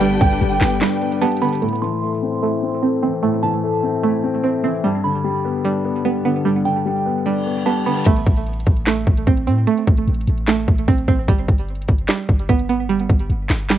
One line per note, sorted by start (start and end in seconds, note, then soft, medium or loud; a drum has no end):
0.00 0.19 G1 loud
0.00 1.63 G2 loud
0.00 0.21 D3 medium
0.00 0.41 G3 loud
0.00 0.80 G3 medium
0.00 0.61 B3 medium
0.00 1.01 B3 medium
0.00 0.21 D4 medium
0.00 1.59 D4 medium
0.00 1.59 G4 medium
0.00 1.59 B4 medium
0.00 1.59 G5 medium
0.00 closed hi-hat medium
0.11 closed hi-hat medium
0.21 0.40 G1 loud
0.21 1.22 D3 medium
0.21 1.18 G5 medium
0.21 kick loud
0.21 closed hi-hat medium
0.31 closed hi-hat medium
0.41 0.60 G1 loud
0.41 1.20 G3 loud
0.41 closed hi-hat medium
0.61 0.81 G1 loud
0.61 1.00 B3 medium
0.61 snare loud
0.61 clap medium
0.61 open hi-hat medium
0.71 closed hi-hat medium
0.81 1.62 G3 medium
0.81 1.62 D4 medium
0.81 snare loud
0.81 clap medium
0.81 closed hi-hat medium
1.02 1.62 B3 medium
1.02 closed hi-hat medium
1.12 closed hi-hat medium
1.22 1.62 G3 medium
1.22 1.41 B3 medium
1.22 1.41 A5 medium
1.22 closed hi-hat soft
1.27 closed hi-hat medium
1.32 closed hi-hat medium
1.37 closed hi-hat medium
1.42 1.62 D3 medium
1.42 1.62 B3 medium
1.42 1.61 B5 medium
1.42 closed hi-hat medium
1.48 closed hi-hat medium
1.55 closed hi-hat medium
1.62 2.62 A2 medium
1.62 2.41 A3 medium
1.62 closed hi-hat medium
1.69 closed hi-hat medium
1.75 closed hi-hat medium
1.82 2.83 E3 medium
1.82 2.79 C6 medium
2.02 2.81 A3 medium
2.22 2.61 C4 medium
2.42 3.22 A3 medium
2.42 3.43 E4 medium
2.62 3.63 C4 medium
2.83 3.62 A3 medium
2.83 3.02 C4 medium
3.03 3.42 E3 medium
3.03 4.24 C4 medium
3.23 4.23 A2 medium
3.23 4.02 A3 loud
3.43 4.44 E3 medium
3.43 4.40 A5 medium
3.63 4.42 A3 medium
3.83 4.22 C4 medium
4.04 4.84 A3 medium
4.04 4.84 E4 medium
4.23 4.84 C4 medium
4.44 4.84 A3 medium
4.44 4.63 C4 medium
4.64 4.84 E3 medium
4.64 4.84 C4 medium
4.84 5.85 G2 medium
4.84 5.63 G3 medium
5.04 6.05 D3 medium
5.04 6.01 B5 medium
5.24 6.03 G3 medium
5.45 5.83 B3 medium
5.64 6.44 G3 medium
5.64 6.65 D4 medium
5.84 6.85 B3 medium
6.05 6.84 G3 medium
6.05 6.24 B3 medium
6.25 6.64 D3 medium
6.25 7.46 B3 medium
6.45 7.46 G2 medium
6.45 7.24 G3 medium
6.65 7.66 D3 medium
6.65 7.62 G5 medium
6.86 7.64 G3 medium
7.06 7.44 B3 medium
7.26 8.06 G3 medium
7.26 8.06 D4 medium
7.26 reverse cymbal medium
7.46 8.06 B3 medium
7.66 8.06 G3 medium
7.66 7.85 B3 medium
7.66 7.85 A5 medium
7.86 8.06 D3 medium
7.86 8.06 B3 medium
7.86 8.05 B5 medium
8.06 8.26 A1 loud
8.06 8.86 A3 loud
8.06 kick loud
8.06 closed hi-hat medium
8.06 crash medium
8.16 closed hi-hat medium
8.26 8.65 A1 loud
8.26 kick loud
8.26 closed hi-hat medium
8.36 closed hi-hat medium
8.46 closed hi-hat soft
8.53 closed hi-hat medium
8.60 closed hi-hat medium
8.66 9.05 A1 loud
8.66 kick medium
8.66 closed hi-hat medium
8.76 closed hi-hat medium
8.87 9.66 A3 medium
8.87 snare loud
8.87 clap medium
8.87 closed hi-hat medium
9.07 9.26 A1 loud
9.07 kick medium
9.07 closed hi-hat medium
9.17 closed hi-hat medium
9.27 9.49 A1 loud
9.27 9.46 C4 medium
9.27 kick medium
9.27 closed hi-hat medium
9.37 closed hi-hat medium
9.47 9.66 A2 loud
9.47 10.68 C4 medium
9.47 closed hi-hat medium
9.67 10.47 A3 loud
9.67 closed hi-hat medium
9.77 closed hi-hat medium
9.87 10.07 A1 loud
9.87 kick loud
9.87 closed hi-hat medium
9.97 closed hi-hat medium
10.08 10.27 A1 loud
10.08 closed hi-hat soft
10.14 closed hi-hat medium
10.21 closed hi-hat medium
10.27 10.66 A1 loud
10.27 closed hi-hat medium
10.38 closed hi-hat medium
10.48 11.28 A3 medium
10.48 snare loud
10.48 clap medium
10.48 closed hi-hat medium
10.68 10.87 A1 loud
10.68 kick loud
10.68 closed hi-hat medium
10.78 closed hi-hat medium
10.88 11.07 A1 loud
10.88 11.07 C4 medium
10.88 kick medium
10.88 closed hi-hat medium
10.98 closed hi-hat medium
11.08 11.27 A1 loud
11.08 11.28 C4 medium
11.08 kick medium
11.08 closed hi-hat medium
11.28 11.48 G1 loud
11.28 12.08 G3 loud
11.28 kick loud
11.28 closed hi-hat medium
11.38 closed hi-hat medium
11.48 11.87 G1 loud
11.48 kick loud
11.48 closed hi-hat medium
11.58 closed hi-hat medium
11.69 closed hi-hat soft
11.75 closed hi-hat medium
11.82 closed hi-hat medium
11.88 12.08 G1 loud
11.88 kick medium
11.88 closed hi-hat medium
11.98 closed hi-hat medium
12.09 12.88 G3 medium
12.09 snare loud
12.09 clap medium
12.09 closed hi-hat medium
12.29 12.48 G1 loud
12.29 kick medium
12.29 closed hi-hat medium
12.39 closed hi-hat medium
12.49 13.07 G1 loud
12.49 12.68 B3 medium
12.49 kick medium
12.49 closed hi-hat medium
12.59 closed hi-hat medium
12.69 13.78 B3 medium
12.69 closed hi-hat medium
12.89 13.69 G3 medium
12.89 closed hi-hat medium
13.00 closed hi-hat medium
13.10 13.29 G1 loud
13.10 kick loud
13.10 closed hi-hat medium
13.19 closed hi-hat medium
13.30 13.49 G1 loud
13.30 closed hi-hat medium
13.49 13.78 G1 loud
13.49 snare medium
13.49 clap medium
13.49 open hi-hat medium
13.60 closed hi-hat medium
13.70 13.78 G3 medium
13.70 snare loud
13.70 clap medium
13.70 closed hi-hat medium